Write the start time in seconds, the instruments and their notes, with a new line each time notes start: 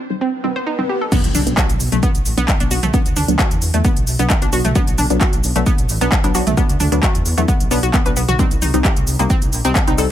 0.10 synth stab G3 C4 D#4
0.21 synth arpeggio sound C4, swell
0.44 synth stab G3 C4 D#4, synth arpeggio sound C4
0.56 synth arpeggio sound C5
0.67 synth arpeggio sound D#4
0.79 synth stab G3 C4 D#4, synth arpeggio sound C4
0.89 synth arpeggio sound G4
1.01 synth arpeggio sound A4
1.12 synth stab F#3 B3 D4, synth arpeggio sound B3, kick, closed hi-hat, crash, impact, shaker
1.24 detuned saw bass B1, closed hi-hat, shaker
1.35 detuned saw bass B1, synth arpeggio sound D4, mid tom, open hi-hat, shaker
1.47 detuned saw bass B1, synth stab F#3 B3 D4, closed hi-hat, shaker
1.57 synth arpeggio sound F#4, kick, clap, closed hi-hat, shaker
1.69 detuned saw bass B1, closed hi-hat, shaker
1.80 detuned saw bass B1, open hi-hat, shaker
1.92 detuned saw bass B1, synth stab F#3 B3 D4, synth arpeggio sound A3, closed hi-hat, shaker
2.03 synth arpeggio sound B3, kick, closed hi-hat, shaker
2.15 detuned saw bass B1, closed hi-hat, shaker
2.25 detuned saw bass A1, open hi-hat, shaker
2.37 detuned saw bass B1, synth stab F#3 B3 D4, synth arpeggio sound B3, closed hi-hat, shaker
2.48 kick, clap, closed hi-hat, shaker
2.60 detuned saw bass B1, synth stab F#3 B3 D4, synth arpeggio sound D4, closed hi-hat, shaker
2.71 detuned saw bass B1, synth stab F#3 B3 D4, synth arpeggio sound F#4, open hi-hat, shaker
2.83 detuned saw bass B1, synth arpeggio sound A3, closed hi-hat, mid tom, shaker
2.94 synth stab F#3 B3 D4, synth arpeggio sound B3, kick, closed hi-hat, shaker
3.06 detuned saw bass D2, closed hi-hat, shaker
3.16 detuned saw bass D2, synth arpeggio sound D4, mid tom, open hi-hat, shaker
3.28 detuned saw bass D2, synth stab F#3 B3 D4, closed hi-hat, shaker
3.39 synth arpeggio sound F#4, kick, clap, closed hi-hat, shaker
3.51 detuned saw bass E2, closed hi-hat, shaker
3.62 detuned saw bass E2, open hi-hat, shaker
3.74 detuned saw bass E2, synth stab F#3 B3 D4, synth arpeggio sound A3, closed hi-hat, shaker
3.85 synth arpeggio sound B3, kick, closed hi-hat, shaker
3.97 detuned saw bass B1, closed hi-hat, shaker
4.07 detuned saw bass B1, open hi-hat, shaker
4.19 detuned saw bass B1, synth stab F#3 B3 D4, synth arpeggio sound B3, closed hi-hat, shaker
4.30 kick, clap, closed hi-hat, shaker
4.42 detuned saw bass B1, synth stab F#3 B3 D4, synth arpeggio sound D4, closed hi-hat, shaker
4.53 detuned saw bass B1, synth stab F#3 B3 D4, synth arpeggio sound F#4, open hi-hat, shaker
4.65 detuned saw bass B1, synth arpeggio sound A3, closed hi-hat, mid tom, shaker
4.75 synth stab F#3 B3 D4, synth arpeggio sound B3, kick, closed hi-hat, shaker
4.87 detuned saw bass B1, closed hi-hat, shaker
4.98 detuned saw bass B1, synth arpeggio sound D4, mid tom, open hi-hat, shaker
5.10 detuned saw bass B1, synth stab F#3 B3 D4, closed hi-hat, shaker
5.21 synth arpeggio sound F#4, kick, clap, closed hi-hat, shaker
5.33 detuned saw bass B1, closed hi-hat, shaker
5.44 detuned saw bass B1, open hi-hat, shaker
5.56 detuned saw bass B1, synth stab F#3 B3 D4, synth arpeggio sound A3, closed hi-hat, shaker
5.66 synth arpeggio sound B3, kick, closed hi-hat, shaker
5.78 detuned saw bass B1, closed hi-hat, shaker
5.89 detuned saw bass A1, open hi-hat, shaker
6.01 detuned saw bass B1, synth stab F#3 B3 D4, synth arpeggio sound B3, closed hi-hat, shaker
6.12 kick, clap, closed hi-hat, shaker
6.24 detuned saw bass B1, synth stab F#3 B3 D4, synth arpeggio sound D4, closed hi-hat, shaker
6.35 detuned saw bass B1, synth stab F#3 B3 D4, synth arpeggio sound F#4, open hi-hat, shaker
6.47 detuned saw bass B1, synth arpeggio sound A3, closed hi-hat, mid tom, shaker
6.57 synth stab F#3 B3 D4, synth arpeggio sound B3, kick, closed hi-hat, shaker
6.69 detuned saw bass D2, closed hi-hat, shaker
6.80 detuned saw bass D2, synth arpeggio sound D4, mid tom, open hi-hat, shaker
6.92 detuned saw bass D2, synth stab F#3 B3 D4, closed hi-hat, shaker
7.03 synth arpeggio sound F#4, kick, clap, closed hi-hat, shaker
7.15 detuned saw bass E2, closed hi-hat, shaker
7.25 detuned saw bass E2, open hi-hat, shaker
7.37 detuned saw bass E2, synth stab F#3 B3 D4, synth arpeggio sound A3, closed hi-hat, shaker
7.48 synth arpeggio sound B3, kick, closed hi-hat, shaker
7.60 detuned saw bass B1, closed hi-hat, shaker
7.71 detuned saw bass B1, synth stab F#3 B3 D4, synth arpeggio sound B3, open hi-hat, shaker
7.83 detuned saw bass B1, synth arpeggio sound F#4, closed hi-hat, shaker
7.94 synth arpeggio sound B3, kick, clap, closed hi-hat, shaker
8.06 detuned saw bass B1, synth stab F#3 B3 D4, synth arpeggio sound B4, closed hi-hat, shaker
8.16 detuned saw bass B1, synth arpeggio sound B3, open hi-hat, shaker
8.28 detuned saw bass B1, synth arpeggio sound F#4, closed hi-hat, mid tom, shaker
8.39 synth stab G3 C4 D#4, synth arpeggio sound C4, kick, closed hi-hat, shaker
8.51 detuned saw bass C2, closed hi-hat, shaker
8.62 detuned saw bass C2, synth arpeggio sound D#4, mid tom, open hi-hat, shaker
8.74 detuned saw bass C2, synth stab G3 C4 D#4, closed hi-hat, shaker
8.85 synth arpeggio sound G4, kick, clap, closed hi-hat, shaker
8.96 detuned saw bass C2, closed hi-hat, shaker
9.07 detuned saw bass C2, open hi-hat, shaker
9.19 detuned saw bass C2, synth stab G3 C4 D#4, synth arpeggio sound A#3, closed hi-hat, shaker
9.30 synth arpeggio sound C4, kick, closed hi-hat, shaker
9.42 detuned saw bass C2, closed hi-hat, shaker
9.53 detuned saw bass A#1, open hi-hat, shaker
9.65 detuned saw bass C2, synth stab G3 C4 D#4, synth arpeggio sound C4, closed hi-hat, shaker
9.75 kick, clap, closed hi-hat, shaker
9.87 detuned saw bass C2, synth stab G3 C4 D#4, synth arpeggio sound D#4, closed hi-hat, shaker
9.98 detuned saw bass C2, synth stab G3 C4 D#4, synth arpeggio sound A4, open hi-hat, shaker